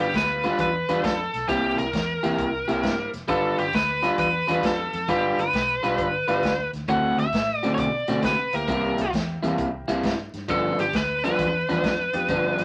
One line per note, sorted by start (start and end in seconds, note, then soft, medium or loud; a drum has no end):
0.00 0.11 G1 medium
0.00 0.56 G3 medium
0.00 0.56 B3 medium
0.00 0.56 D4 medium
0.00 0.56 F4 medium
0.00 0.15 G4 medium
0.00 snare soft
0.14 0.50 D2 medium
0.14 0.56 B4 medium
0.14 kick medium
0.14 snare loud
0.14 closed hi-hat medium
0.44 0.68 G3 medium
0.44 0.68 D4 medium
0.44 0.68 F4 medium
0.44 0.68 B4 medium
0.44 snare soft
0.44 closed hi-hat medium
0.58 0.83 E2 medium
0.58 1.01 B4 medium
0.58 kick medium
0.58 closed hi-hat medium
0.89 1.01 E2 medium
0.89 1.13 G3 medium
0.89 1.13 D4 medium
0.89 1.13 F4 medium
0.89 1.13 B4 medium
0.89 snare soft
0.89 closed hi-hat medium
1.04 1.28 F2 medium
1.04 1.49 A4 medium
1.04 kick medium
1.04 snare loud
1.04 closed hi-hat medium
1.34 1.46 B1 medium
1.34 snare soft
1.34 closed hi-hat medium
1.48 1.72 C2 medium
1.48 1.83 C3 medium
1.48 1.75 G3 soft
1.48 1.75 A#3 soft
1.48 1.83 A#3 medium
1.48 1.75 C4 soft
1.48 1.75 E4 medium
1.48 1.83 E4 medium
1.48 1.79 G4 medium
1.48 1.83 G4 medium
1.48 kick medium
1.48 snare soft
1.48 closed hi-hat medium
1.78 1.91 C2 medium
1.78 3.10 A#4 medium
1.78 snare soft
1.78 closed hi-hat medium
1.93 2.17 E2 medium
1.93 kick medium
1.93 snare medium
1.93 closed hi-hat medium
2.23 2.35 E2 medium
2.23 2.48 C3 medium
2.23 2.48 A#3 medium
2.23 2.48 E4 medium
2.23 2.47 G4 medium
2.23 snare soft
2.23 closed hi-hat medium
2.38 2.62 C2 medium
2.38 kick medium
2.38 closed hi-hat medium
2.68 2.80 C2 medium
2.68 2.93 C3 medium
2.68 2.92 A#3 medium
2.68 2.92 E4 medium
2.68 2.92 G4 medium
2.68 snare soft
2.68 closed hi-hat medium
2.82 3.07 G2 medium
2.82 3.10 G3 medium
2.82 3.10 A#3 medium
2.82 3.10 C4 medium
2.82 3.10 E4 medium
2.82 kick medium
2.82 snare loud
2.82 closed hi-hat medium
3.13 3.26 F1 medium
3.13 snare soft
3.13 closed hi-hat medium
3.27 3.52 G1 medium
3.27 3.55 G3 medium
3.27 3.62 G3 medium
3.27 3.55 B3 soft
3.27 3.55 D4 soft
3.27 3.63 D4 medium
3.27 3.55 F4 medium
3.27 3.63 F4 medium
3.27 3.59 A4 medium
3.27 3.63 B4 medium
3.27 kick medium
3.27 closed hi-hat medium
3.58 3.71 G1 medium
3.58 3.74 G4 medium
3.58 snare soft
3.58 closed hi-hat medium
3.73 4.09 D2 medium
3.73 4.18 B4 medium
3.73 kick medium
3.73 snare loud
3.73 closed hi-hat medium
4.03 4.27 G3 medium
4.03 4.27 D4 medium
4.03 4.27 F4 medium
4.03 4.27 B4 medium
4.03 snare soft
4.03 closed hi-hat medium
4.18 4.42 E2 medium
4.18 4.65 B4 medium
4.18 kick medium
4.18 closed hi-hat medium
4.47 4.60 E2 medium
4.47 4.72 G3 medium
4.47 4.72 D4 medium
4.47 4.72 F4 medium
4.47 4.72 B4 medium
4.47 snare soft
4.47 closed hi-hat medium
4.63 4.87 F2 medium
4.63 4.90 G3 soft
4.63 4.90 B3 soft
4.63 4.90 D4 soft
4.63 4.90 F4 medium
4.63 5.10 A4 medium
4.63 kick medium
4.63 snare loud
4.63 closed hi-hat medium
4.93 5.05 F2 medium
4.93 snare soft
4.93 closed hi-hat medium
5.08 5.32 G1 medium
5.08 5.35 G3 medium
5.08 5.43 G3 medium
5.08 5.35 B3 soft
5.08 5.35 D4 medium
5.08 5.43 D4 medium
5.08 5.35 F4 medium
5.08 5.43 F4 medium
5.08 5.40 G4 medium
5.08 5.43 B4 medium
5.08 kick medium
5.08 snare soft
5.08 closed hi-hat medium
5.38 5.50 G1 medium
5.38 6.70 B4 medium
5.38 snare soft
5.38 closed hi-hat medium
5.53 5.77 B1 medium
5.53 kick medium
5.53 snare loud
5.53 closed hi-hat medium
5.83 5.95 B1 medium
5.83 6.08 G3 medium
5.83 6.07 D4 medium
5.83 6.07 F4 medium
5.83 6.07 B4 medium
5.83 snare soft
5.83 closed hi-hat medium
5.98 6.22 G1 medium
5.98 kick medium
5.98 closed hi-hat medium
6.28 6.40 G1 medium
6.28 6.41 G3 medium
6.28 6.52 G3 medium
6.28 6.42 B3 medium
6.28 6.52 D4 medium
6.28 6.42 D4 medium
6.28 6.42 E4 medium
6.28 6.52 F4 medium
6.28 6.52 B4 medium
6.28 snare soft
6.28 closed hi-hat medium
6.43 6.67 D2 medium
6.43 kick medium
6.43 snare loud
6.43 closed hi-hat medium
6.73 6.85 D2 medium
6.73 snare soft
6.73 closed hi-hat medium
6.88 7.12 D2 medium
6.88 7.23 D3 medium
6.88 7.23 A3 medium
6.88 7.23 C4 medium
6.88 7.23 F#4 medium
6.88 7.17 F#5 medium
6.88 kick medium
6.88 closed hi-hat medium
7.18 7.30 D2 medium
7.18 7.58 E5 medium
7.18 snare soft
7.18 closed hi-hat medium
7.33 7.69 A2 medium
7.33 kick medium
7.33 snare loud
7.33 closed hi-hat medium
7.58 7.70 D5 medium
7.63 7.88 D3 medium
7.63 7.88 A3 medium
7.63 7.88 C4 medium
7.63 7.87 F#4 medium
7.63 snare soft
7.63 closed hi-hat medium
7.74 8.02 B2 medium
7.74 7.79 C#5 medium
7.74 kick medium
7.74 closed hi-hat medium
7.80 8.24 D5 medium
8.07 8.20 B2 medium
8.07 8.33 D3 medium
8.07 8.33 A3 medium
8.07 8.32 C4 medium
8.07 8.32 F#4 medium
8.07 snare soft
8.07 closed hi-hat medium
8.22 8.47 C3 medium
8.22 8.55 B4 medium
8.22 kick medium
8.22 snare loud
8.22 closed hi-hat medium
8.53 8.65 D2 medium
8.53 8.66 A#3 medium
8.53 8.66 C4 medium
8.53 8.67 E4 medium
8.53 8.67 G4 medium
8.53 9.10 A#4 medium
8.53 snare soft
8.53 closed hi-hat medium
8.67 8.92 C2 medium
8.67 9.03 C3 medium
8.67 9.03 G3 medium
8.67 9.94 A#3 medium
8.67 9.03 A#3 medium
8.67 9.94 C4 medium
8.67 9.94 E4 medium
8.67 9.03 E4 medium
8.67 9.95 G4 medium
8.67 kick medium
8.67 closed hi-hat medium
8.98 9.10 C2 medium
8.98 snare soft
8.98 closed hi-hat medium
9.13 9.37 E2 medium
9.13 kick medium
9.13 snare loud
9.13 closed hi-hat medium
9.43 9.55 E2 medium
9.43 9.68 C3 medium
9.43 9.67 G3 medium
9.43 9.67 A#3 medium
9.43 9.67 E4 medium
9.43 snare soft
9.43 closed hi-hat medium
9.58 9.82 C2 medium
9.58 kick medium
9.58 closed hi-hat medium
9.88 10.00 C2 medium
9.88 10.13 C3 medium
9.88 10.13 G3 medium
9.88 10.12 A#3 medium
9.88 10.12 E4 medium
9.88 snare soft
9.88 closed hi-hat medium
10.03 10.27 G2 medium
10.03 kick medium
10.03 snare loud
10.03 closed hi-hat medium
10.33 10.46 G2 medium
10.33 snare soft
10.33 closed hi-hat medium
10.48 10.72 G1 medium
10.48 10.83 G2 medium
10.48 10.83 F3 medium
10.48 10.83 B3 medium
10.48 10.84 D4 medium
10.48 10.78 A4 medium
10.48 kick medium
10.48 closed hi-hat medium
10.79 10.91 G1 medium
10.79 10.95 G4 medium
10.79 snare soft
10.79 closed hi-hat medium
10.93 11.30 D2 medium
10.93 11.24 B4 medium
10.93 kick medium
10.93 snare loud
10.93 closed hi-hat medium
11.24 11.48 G2 medium
11.24 11.48 F3 medium
11.24 11.48 B3 medium
11.24 11.48 D4 medium
11.24 12.64 B4 medium
11.24 snare soft
11.24 closed hi-hat medium
11.39 11.63 E2 medium
11.39 kick medium
11.39 snare soft
11.39 closed hi-hat medium
11.69 11.81 E2 medium
11.69 11.93 G2 medium
11.69 11.93 F3 medium
11.69 11.93 B3 medium
11.69 11.93 D4 medium
11.69 snare soft
11.69 closed hi-hat medium
11.84 12.08 F2 medium
11.84 kick medium
11.84 snare medium
11.84 closed hi-hat medium
12.13 12.26 F2 medium
12.13 12.27 B3 medium
12.13 12.27 D4 medium
12.13 12.27 F4 medium
12.13 12.27 G4 medium
12.13 snare soft
12.13 closed hi-hat medium
12.28 12.53 G1 medium
12.28 12.63 G2 medium
12.28 12.63 F3 medium
12.28 12.64 B3 medium
12.28 12.64 D4 medium
12.28 kick medium
12.28 closed hi-hat medium
12.58 12.64 G1 medium
12.58 snare soft
12.58 closed hi-hat medium